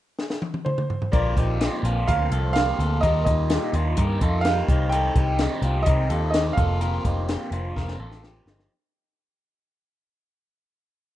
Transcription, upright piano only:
0.65 C5
1.12 D5
2.08 F5
2.53 F5
3.01 D#5
3.24 D#5
4.41 F5
4.89 G5
5.83 D#5
6.30 D#5
6.53 F5

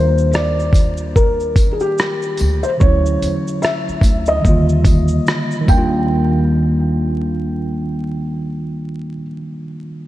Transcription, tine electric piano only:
Already playing: D#3 G3 A#3 D4 F4
2.77 D3 F#3
2.82 A3 C#4
2.86 E4
4.40 D#3 G3
4.45 D3 A#3
4.49 F4
5.61 D#3
5.65 G3 A#3
5.74 D4
5.78 F4

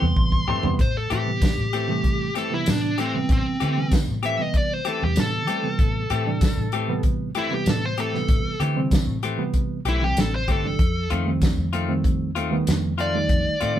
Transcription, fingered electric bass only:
0.02 E2
0.17 A1
0.49 G2
0.79 A2
1.11 A2
1.58 A2
2.36 G2
2.68 A2
3.29 A2
3.46 muted fingered electric bass stroke
3.62 D3
4.08 A2
5.02 E2
5.17 A2
5.48 G3
5.79 A2
6.10 A2
6.57 A2
7.35 G2
7.67 A2
8.29 A2
8.44 muted fingered electric bass stroke
8.60 D3
9.07 A2
9.85 B1
10.17 A1
10.48 G1
10.79 F2
11.11 F2
11.57 F2
12.36 D#2
12.68 F2
13.29 F2
13.47 muted fingered electric bass stroke
13.62 A2

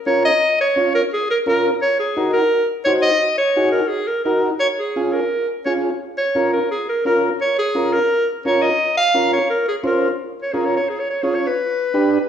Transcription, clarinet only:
0.07 C#5
0.25 D#5
0.61 C#5
0.95 A#4
1.13 G#4
1.30 A#4
1.48 A#4
1.81 C#5
1.99 G#4
2.33 A#4
2.84 C#5
3.02 D#5
3.38 C#5
3.71 A#4
3.88 G#4
4.07 A#4
4.24 A#4
4.60 C#5
4.79 G#4
5.13 A#4
5.66 C#5
6.18 C#5
6.53 A#4
6.71 G#4
6.89 A#4
7.06 A#4
7.41 C#5
7.58 G#4
7.93 A#4
8.46 C#5
8.62 D#5
8.97 F5
9.33 C#5
9.50 A#4
9.68 G#4
9.86 A#4
10.42 C#5
10.53 G#4
10.65 C#5
10.76 C#5
10.89 G#4
10.99 C#5
11.10 C#5
11.22 G#4
11.35 C#5
11.46 B4

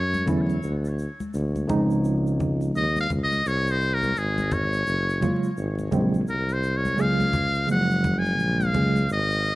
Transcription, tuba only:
Already playing: F#2
0.28 E2
0.64 D2
1.34 D2
1.69 C#2
2.75 D#2
3.11 C#2
3.46 C2
4.16 G#1
4.87 F#1
5.57 G#1
5.93 A#1
6.28 C2
6.99 C#2
7.70 F#1
8.40 A#1
8.75 C#2
9.10 G#1

